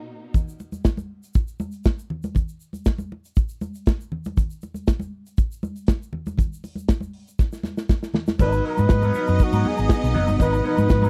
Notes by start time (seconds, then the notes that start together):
Already playing: A#2 B2 D#4
0.34 kick, closed hi-hat, low conga, shaker
0.48 shaker
0.60 muted conga, shaker
0.72 closed hi-hat, high conga, shaker
0.84 kick, snare, closed hi-hat, shaker
0.97 high conga, shaker
1.23 closed hi-hat, shaker
1.34 kick, closed hi-hat, shaker
1.48 shaker
1.60 muted conga, high conga, shaker
1.72 closed hi-hat, shaker
1.84 kick, snare, closed hi-hat, shaker
1.99 shaker
2.10 low conga
2.23 closed hi-hat, high conga, shaker
2.35 kick, closed hi-hat, muted conga, low conga, shaker
2.49 shaker
2.60 shaker
2.73 closed hi-hat, high conga, shaker
2.85 kick, snare, closed hi-hat, muted conga, shaker
2.98 high conga, shaker
3.12 muted conga
3.25 closed hi-hat, shaker
3.36 kick, closed hi-hat, shaker
3.49 shaker
3.61 high conga, shaker
3.74 closed hi-hat, shaker
3.86 kick, snare, closed hi-hat, shaker
4.01 shaker
4.12 low conga
4.25 closed hi-hat, high conga, shaker
4.37 kick, closed hi-hat, muted conga, low conga, shaker
4.50 shaker
4.62 muted conga, shaker
4.74 closed hi-hat, high conga, shaker
4.87 kick, snare, closed hi-hat, muted conga, shaker
5.00 high conga, shaker
5.26 closed hi-hat, shaker
5.37 kick, closed hi-hat, shaker
5.52 shaker
5.63 muted conga, high conga, shaker
5.76 closed hi-hat, shaker
5.87 kick, snare, closed hi-hat, shaker
6.03 shaker
6.13 muted conga, low conga
6.26 closed hi-hat, high conga, shaker
6.38 kick, closed hi-hat, low conga, shaker
6.53 shaker
6.64 open hi-hat, muted conga, shaker
6.75 closed hi-hat, high conga, shaker
6.88 kick, snare, closed hi-hat, muted conga, shaker
7.01 high conga, shaker
7.13 open hi-hat
7.28 closed hi-hat, shaker
7.39 kick, snare, shaker
7.53 snare, shaker
7.63 snare, high conga, shaker
7.77 snare, shaker
7.89 kick, snare, shaker
8.03 snare, shaker
8.14 snare, low conga
8.27 snare, high conga, shaker
8.39 G#1 B2 F#3 B3 D#4 A#4 B4 D#5, kick, crash, low conga, shaker
8.52 muted clean electric guitar stroke, shaker
8.65 F#3 B3 D#4 A#4 B4, open hi-hat
8.77 G#2 F#3 B3 D#4 B4, closed hi-hat, high conga, shaker
8.89 G#2, muted clean electric guitar stroke, kick, snare, closed hi-hat, muted conga, shaker
9.02 F#3 B3 D#4 A#4, high conga, shaker
9.14 F#3 B3 D#4 A#4, open hi-hat, muted conga, shaker
9.27 F#2, muted clean electric guitar stroke, closed hi-hat, shaker
9.39 muted clean electric guitar stroke, muted fingered electric bass stroke, kick, closed hi-hat, shaker
9.43 F#4
9.52 G#2 F#3 B3 D#4 A#4, shaker
9.65 F#3 B3 D#4 G#4 A#4, open hi-hat, muted conga, high conga
9.77 G#1, muted clean electric guitar stroke, closed hi-hat, shaker
9.88 muted clean electric guitar stroke, kick, snare, closed hi-hat, shaker
10.03 B1, muted clean electric guitar stroke, shaker
10.14 F#1 F#3 B3 D#4 A#4, open hi-hat, muted conga, low conga
10.27 G1, muted clean electric guitar stroke, closed hi-hat, high conga, shaker
10.39 G#1 F3 F#3 B3 D#4 A#4 B4, kick, closed hi-hat, low conga, shaker
10.53 muted clean electric guitar stroke, shaker
10.64 F#3 B3 D#4 A#4 B4, open hi-hat, muted conga
10.77 G#2 F#3 B3 D#4 B4, closed hi-hat, high conga, shaker
10.89 G#2, kick, snare, closed hi-hat, muted conga, shaker
11.02 F#3 B3 D#4 A#4, high conga, shaker